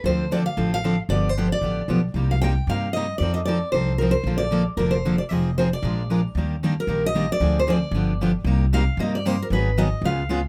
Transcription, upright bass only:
X:1
M:4/4
L:1/8
Q:"Swing" 1/4=229
K:Bb
V:1 name="Upright bass" clef=bass
D,,4 A,,,4 | G,,,4 A,,,2 =B,,,2 | C,,4 G,,4 | F,,4 C,,4 |
B,,,4 F,,,4 | F,,,4 B,,,4 | [K:Eb] E,,4 B,,,4 | D,,4 G,,,4 |
C,,4 G,,4 | A,,,4 _D,,4 |]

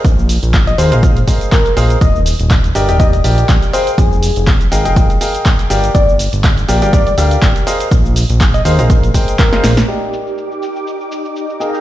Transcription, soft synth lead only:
X:1
M:4/4
L:1/16
Q:"Swing 16ths" 1/4=122
K:Eb
V:1 name="Soft synth lead"
z4 z e c z4 z B3 z | e z6 z e e z4 c z | A4 z12 | d z6 z d d f z4 z |
z4 z e c z4 z B3 z | z16 |]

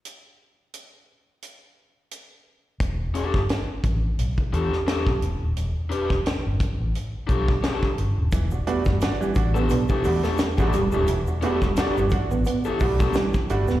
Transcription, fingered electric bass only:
X:1
M:4/4
L:1/16
Q:"Swing 16ths" 1/4=87
K:Em
V:1 name="Fingered electric bass" clef=bass
z16 | E,,,2 z G,,, z2 A,,,2 B,,, z E,, z2 B,,, E,,, ^D,,, | E,,, z2 E,,, z G,,, z A,,, z2 B,,,2 z2 G,,, ^D,,, | E,,,2 z G,,, z2 A,,,2 B,,, z E,, z2 A,,, E,,, ^D,,, |
E,,, z2 E,,, z G,,, z A,,, z2 B,,,2 z2 G,,, ^D,,, |]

